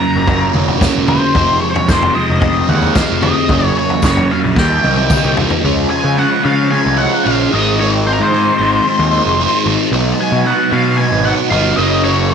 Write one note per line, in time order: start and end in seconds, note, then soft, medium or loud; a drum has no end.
0.00 0.55 F#2 medium
0.00 0.24 C#3 medium
0.00 0.25 F#3 medium
0.00 1.34 F#3 medium
0.00 0.26 A#3 medium
0.00 0.27 C#4 medium
0.00 1.33 F4 medium
0.00 0.51 A#4 medium
0.00 1.34 A#4 medium
0.16 0.46 F#1 medium
0.25 0.54 C#3 medium
0.25 0.53 F#3 medium
0.25 0.53 A#3 medium
0.25 0.52 C#4 medium
0.25 kick loud
0.25 floor tom medium
0.53 0.86 F1 medium
0.53 1.09 F#2 medium
0.53 0.80 C#3 medium
0.53 0.81 F#3 medium
0.53 0.82 A#3 medium
0.53 0.82 C#4 medium
0.53 mid tom medium
0.68 floor tom medium
0.81 1.34 C#3 medium
0.81 1.08 F#3 medium
0.81 1.07 A#3 medium
0.81 1.05 C#4 medium
0.81 kick loud
0.81 snare medium
0.81 floor tom medium
0.81 tambourine medium
0.96 1.16 E1 medium
1.07 1.34 F#3 medium
1.07 1.34 A#3 medium
1.07 1.33 C#4 medium
1.07 1.61 C5 medium
1.07 floor tom medium
1.07 mid tom medium
1.34 1.56 F1 medium
1.34 1.89 F2 medium
1.34 1.85 C3 medium
1.34 1.62 F3 medium
1.34 3.48 F3 medium
1.34 1.60 G#3 medium
1.34 1.59 C4 medium
1.34 3.49 D#4 medium
1.34 3.49 G#4 medium
1.34 kick loud
1.34 floor tom medium
1.60 1.87 F3 medium
1.60 1.88 G#3 medium
1.60 1.89 C4 medium
1.60 1.69 C#5 medium
1.70 1.74 C5 medium
1.74 1.89 C#5 medium
1.74 floor tom medium
1.87 2.10 F1 medium
1.87 2.14 C3 medium
1.87 2.14 F3 medium
1.87 2.13 G#3 medium
1.87 2.12 C4 medium
1.87 2.14 C5 medium
1.87 kick loud
1.87 snare medium
1.87 tambourine medium
2.03 floor tom medium
2.13 2.69 F2 medium
2.13 2.40 C3 medium
2.13 2.42 F3 medium
2.13 2.42 G#3 medium
2.13 2.43 C4 medium
2.13 2.39 D#5 medium
2.30 2.61 F1 medium
2.40 2.68 C3 medium
2.40 2.69 F3 medium
2.40 2.67 G#3 medium
2.40 2.66 C4 medium
2.40 2.69 D#5 medium
2.40 kick loud
2.40 floor tom medium
2.67 3.00 D#2 medium
2.67 3.23 F2 medium
2.67 2.93 C3 medium
2.67 2.94 F3 medium
2.67 2.94 G#3 medium
2.67 2.95 C4 medium
2.67 2.94 F#5 medium
2.67 mid tom medium
2.82 floor tom medium
2.94 3.47 C3 medium
2.94 3.23 F3 medium
2.94 3.21 G#3 medium
2.94 3.19 C4 medium
2.94 3.23 F5 medium
2.94 kick loud
2.94 snare medium
2.94 floor tom medium
2.94 tambourine medium
3.10 3.31 F1 medium
3.20 3.50 F3 medium
3.20 3.48 G#3 medium
3.20 3.47 C4 medium
3.20 3.66 D#5 medium
3.20 floor tom medium
3.20 mid tom medium
3.49 3.70 F#1 loud
3.49 4.03 F#2 medium
3.49 4.01 C#3 medium
3.49 4.56 F#3 medium
3.49 3.76 F#3 medium
3.49 3.75 A#3 medium
3.49 3.74 C#4 medium
3.49 5.62 F4 medium
3.49 4.56 A#4 medium
3.49 kick loud
3.49 floor tom medium
3.66 3.78 C#5 medium
3.75 4.02 F#3 soft
3.75 4.03 A#3 medium
3.75 4.03 C#4 medium
3.75 4.03 C#5 medium
3.90 floor tom medium
4.02 4.24 F#1 medium
4.02 4.31 C#3 medium
4.02 4.30 F#3 medium
4.02 4.29 A#3 medium
4.02 4.28 C#4 medium
4.02 4.32 C#5 medium
4.02 kick loud
4.02 snare medium
4.02 tambourine medium
4.17 floor tom medium
4.30 4.56 F#2 medium
4.30 4.56 C#3 medium
4.30 4.56 F#3 medium
4.30 4.56 A#3 medium
4.30 4.55 C#4 medium
4.30 4.38 F5 medium
4.44 4.54 A#1 medium
4.56 4.77 D#2 medium
4.56 4.85 D#3 medium
4.56 5.63 G3 medium
4.56 4.84 G3 medium
4.56 4.83 A#3 medium
4.56 4.82 D#4 medium
4.56 5.63 D#5 medium
4.56 5.34 G5 medium
4.56 kick medium
4.56 snare medium
4.83 5.15 C2 medium
4.83 5.09 D#3 medium
4.83 5.10 G3 medium
4.83 5.10 A#3 medium
4.83 5.11 D#4 medium
4.83 high tom medium
4.97 high tom soft
5.10 5.62 D#3 medium
5.10 5.38 G3 medium
5.10 5.37 A#3 medium
5.10 5.35 D#4 medium
5.10 kick loud
5.10 mid tom medium
5.10 tambourine medium
5.24 5.44 C2 medium
5.36 5.63 G3 medium
5.36 5.63 A#3 medium
5.36 5.62 D#4 medium
5.36 floor tom medium
5.50 floor tom medium
5.63 5.85 C#2 medium
5.63 6.15 C#3 medium
5.63 7.50 F3 medium
5.63 5.92 G#3 medium
5.63 7.49 C#4 medium
5.63 5.90 C#4 medium
5.63 5.90 F4 medium
5.63 7.50 C5 medium
5.90 6.17 G#3 medium
5.90 6.17 C#4 medium
5.90 6.18 F4 medium
5.90 6.18 G#5 medium
6.04 6.25 C#3 medium
6.16 6.45 C#3 medium
6.16 6.45 G#3 medium
6.16 6.43 C#4 medium
6.16 6.42 F4 medium
6.16 6.44 F#5 medium
6.43 6.76 C#3 medium
6.43 6.69 C#3 medium
6.43 6.72 G#3 medium
6.43 6.72 C#4 medium
6.43 6.73 F4 medium
6.43 6.71 F5 medium
6.71 7.23 C#3 medium
6.71 7.00 G#3 medium
6.71 6.98 C#4 medium
6.71 6.96 F4 medium
6.71 6.97 G#5 medium
6.86 7.06 C2 medium
6.97 7.25 G#3 medium
6.97 7.25 C#4 medium
6.97 7.26 F4 medium
6.97 7.24 F#5 medium
7.25 7.46 A#1 medium
7.25 7.49 C#3 medium
7.25 7.53 G#3 medium
7.25 7.50 C#4 loud
7.25 7.51 F4 loud
7.25 7.49 F5 medium
7.51 8.21 G#1 medium
7.51 7.78 G#2 medium
7.51 7.79 D#3 medium
7.51 11.73 G#3 medium
7.51 7.80 G#3 medium
7.51 7.80 C4 medium
7.51 7.81 D#4 medium
7.51 9.88 F4 medium
7.51 9.89 C5 medium
7.51 7.80 D#5 medium
7.79 8.32 G#2 medium
7.79 8.31 D#3 medium
7.79 8.09 G#3 medium
7.79 8.07 C4 medium
7.79 8.07 D#4 medium
7.79 7.87 C#5 medium
8.07 8.33 G#3 medium
8.07 8.33 C4 medium
8.07 8.35 D#4 medium
8.07 8.12 C5 medium
8.13 8.19 A#4 medium
8.20 8.50 G#2 medium
8.20 9.62 C5 medium
8.32 8.60 D#3 medium
8.32 8.59 G#3 medium
8.32 8.58 C4 medium
8.32 8.57 D#4 medium
8.58 8.79 G#1 medium
8.58 9.13 G#2 medium
8.58 8.84 D#3 medium
8.58 8.85 G#3 medium
8.58 8.86 C4 medium
8.58 8.87 D#4 medium
8.85 9.38 D#3 medium
8.85 9.13 G#3 medium
8.85 9.12 C4 medium
8.85 9.10 D#4 medium
8.99 9.19 D#2 medium
9.11 9.39 G#3 medium
9.11 9.40 C4 medium
9.11 9.40 D#4 medium
9.26 9.46 F1 medium
9.38 9.90 G#2 loud
9.38 9.90 D#3 loud
9.38 9.66 G#3 medium
9.38 9.65 C4 loud
9.38 9.64 D#4 medium
9.65 9.75 G#1 medium
9.65 9.91 G#3 medium
9.65 9.90 C4 medium
9.65 9.89 D#4 medium
9.91 10.12 B1 medium
9.91 10.44 B2 medium
9.91 10.21 F#3 medium
9.91 10.18 B3 medium
9.91 11.75 D#4 medium
9.91 10.17 D#4 medium
9.91 11.75 B4 medium
10.18 10.46 F#3 medium
10.18 10.46 B3 medium
10.18 10.47 D#4 medium
10.18 10.44 G#5 loud
10.32 10.52 B2 medium
10.45 10.73 B2 medium
10.45 10.73 F#3 medium
10.45 10.72 B3 medium
10.45 10.71 D#4 medium
10.45 10.72 F#5 medium
10.72 11.02 B2 medium
10.72 10.97 B2 medium
10.72 10.97 F#3 medium
10.72 10.98 B3 medium
10.72 10.99 D#4 loud
10.72 10.97 F5 medium
10.98 11.49 B2 medium
10.98 11.26 F#3 medium
10.98 11.24 B3 medium
10.98 11.23 D#4 medium
10.98 11.25 G#5 loud
11.12 11.32 G#1 medium
11.24 11.49 F#3 medium
11.24 11.50 B3 medium
11.24 11.51 D#4 medium
11.24 11.32 F#5 medium
11.50 11.71 G1 loud
11.50 11.75 B2 medium
11.50 11.75 F#3 loud
11.50 11.76 B3 medium
11.50 11.76 D#4 loud
11.50 11.78 F5 medium
11.76 12.34 F#1 medium
11.76 12.01 F#2 medium
11.76 12.02 C#3 medium
11.76 12.34 F#3 medium
11.76 12.03 F#3 medium
11.76 12.03 A#3 medium
11.76 12.05 C#4 medium
11.76 12.34 C#4 medium
11.76 12.34 A#4 medium
11.76 12.04 D#5 medium
12.02 12.34 F#2 medium
12.02 12.34 C#3 medium
12.02 12.31 F#3 medium
12.02 12.30 A#3 medium
12.02 12.29 C#4 medium
12.02 12.31 C#5 medium
12.29 12.34 A#3 medium
12.29 12.34 C#4 medium
12.29 12.34 C5 medium